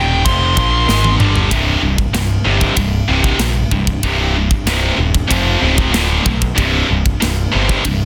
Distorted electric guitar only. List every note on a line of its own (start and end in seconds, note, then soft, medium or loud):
0.00 0.23 D#2 medium
0.00 0.24 A#2 loud
0.00 0.24 D#3 loud
0.25 0.55 F2 medium
0.25 0.56 C3 loud
0.25 0.55 F3 loud
0.55 0.86 A#2 medium
0.55 0.87 F3 loud
0.55 0.87 A#3 loud
0.87 1.18 G#2 medium
0.87 1.18 D#3 loud
0.87 1.18 G#3 loud
1.19 1.49 G2 medium
1.19 1.50 D3 medium
1.19 1.50 G3 loud
1.51 1.80 C2 medium
1.51 1.81 G2 medium
1.51 1.81 C3 loud
1.82 2.10 C2 medium
1.82 2.10 G2 medium
2.14 2.42 C2 medium
2.14 2.42 G2 medium
2.45 2.74 C2 medium
2.45 2.74 G2 medium
2.45 2.74 C3 medium
2.76 3.05 C2 medium
2.76 3.05 G2 medium
3.08 3.38 C2 medium
3.08 3.38 G2 medium
3.08 3.38 C3 medium
3.41 3.68 C2 medium
3.41 3.69 G2 medium
3.72 4.00 C2 medium
3.72 4.00 G2 medium
4.04 4.33 C2 medium
4.04 4.33 G2 medium
4.04 4.33 C3 loud
4.36 4.64 C2 medium
4.36 4.64 G2 medium
4.67 4.96 C2 medium
4.67 4.96 G2 loud
4.67 4.97 C3 loud
4.97 5.26 C2 medium
4.97 5.26 G2 medium
5.28 5.59 F2 medium
5.28 5.59 C3 medium
5.28 5.59 F3 loud
5.61 5.91 F2 medium
5.61 5.91 C3 loud
5.61 5.91 F3 loud
5.92 6.22 D2 medium
5.92 6.23 A2 medium
5.92 6.23 D3 medium
6.25 6.54 D2 medium
6.25 6.54 A2 medium
6.56 6.86 C2 medium
6.56 6.86 G2 medium
6.56 6.86 C3 medium
6.88 7.17 C2 medium
6.88 7.17 G2 medium
7.20 7.49 C2 medium
7.20 7.49 G2 medium
7.52 7.82 C2 medium
7.52 7.82 G2 loud
7.52 7.82 C3 loud
7.84 8.05 C2 medium
7.84 8.05 G2 medium